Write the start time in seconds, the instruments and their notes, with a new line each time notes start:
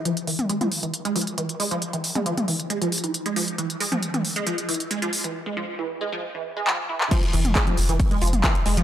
0.05 synth arpeggio sound F3, closed hi-hat
0.17 closed hi-hat
0.27 synth arpeggio sound E3, open hi-hat
0.39 closed hi-hat, mid tom
0.49 synth arpeggio sound G#3, closed hi-hat
0.61 synth arpeggio sound F3, closed hi-hat, mid tom
0.72 open hi-hat
0.83 synth arpeggio sound E3, closed hi-hat
0.94 closed hi-hat
1.05 synth arpeggio sound G#3, closed hi-hat
1.16 synth arpeggio sound F3, open hi-hat
1.21 closed hi-hat
1.27 closed hi-hat
1.38 synth arpeggio sound E3, closed hi-hat
1.49 closed hi-hat
1.60 synth arpeggio sound G#3, open hi-hat
1.71 synth arpeggio sound F3, closed hi-hat
1.82 closed hi-hat
1.93 synth arpeggio sound E3, closed hi-hat
2.04 open hi-hat
2.15 synth arpeggio sound G#3, closed hi-hat, mid tom
2.26 synth arpeggio sound F3, closed hi-hat
2.38 closed hi-hat, mid tom
2.48 synth arpeggio sound E3, open hi-hat
2.60 closed hi-hat
2.70 synth arpeggio sound G#3, closed hi-hat
2.82 synth arpeggio sound F3, closed hi-hat
2.92 open hi-hat
2.98 closed hi-hat
3.04 synth arpeggio sound E3, closed hi-hat
3.14 closed hi-hat
3.26 synth arpeggio sound G#3, closed hi-hat
3.36 synth arpeggio sound F3, open hi-hat
3.48 closed hi-hat
3.58 synth arpeggio sound E3, closed hi-hat
3.70 closed hi-hat
3.80 synth arpeggio sound G#3, open hi-hat
3.92 synth arpeggio sound F3, closed hi-hat, mid tom
4.03 closed hi-hat
4.14 synth arpeggio sound E3, closed hi-hat, mid tom
4.25 open hi-hat
4.36 synth arpeggio sound G#3, closed hi-hat
4.47 synth arpeggio sound F3, closed hi-hat
4.58 closed hi-hat
4.69 synth arpeggio sound E3, open hi-hat
4.74 closed hi-hat
4.80 closed hi-hat
4.91 synth arpeggio sound G#3, closed hi-hat
5.02 synth arpeggio sound F3, closed hi-hat
5.13 open hi-hat
5.24 synth arpeggio sound E3, closed hi-hat
5.46 synth arpeggio sound G#3
5.57 synth arpeggio sound F3
5.79 synth arpeggio sound E3
6.01 synth arpeggio sound G#3
6.12 synth arpeggio sound F3
6.35 synth arpeggio sound E3
6.57 synth arpeggio sound G#3
6.67 synth arpeggio sound F3, clap
6.89 synth arpeggio sound E3
7.01 clap
7.11 synth arpeggio sound F3, kick, closed hi-hat, crash
7.23 snare, closed hi-hat
7.33 sub bass F1, synth arpeggio sound E3, closed hi-hat, open hi-hat
7.45 sub bass F1, closed hi-hat, mid tom
7.55 synth arpeggio sound G#3, kick, snare, clap, closed hi-hat
7.67 synth arpeggio sound F3, closed hi-hat, mid tom
7.77 sub bass F1, snare, closed hi-hat, open hi-hat
7.89 sub bass F1, synth arpeggio sound E3, closed hi-hat
8.00 kick, closed hi-hat, open hi-hat
8.11 synth arpeggio sound G#3, closed hi-hat
8.21 sub bass F1, synth arpeggio sound F3, closed hi-hat, open hi-hat
8.27 closed hi-hat
8.33 sub bass F1, closed hi-hat, mid tom
8.44 synth arpeggio sound E3, kick, snare, clap, closed hi-hat
8.55 closed hi-hat
8.66 sub bass F1, synth arpeggio sound G#3, snare, closed hi-hat, open hi-hat
8.77 sub bass F1, synth arpeggio sound F3, closed hi-hat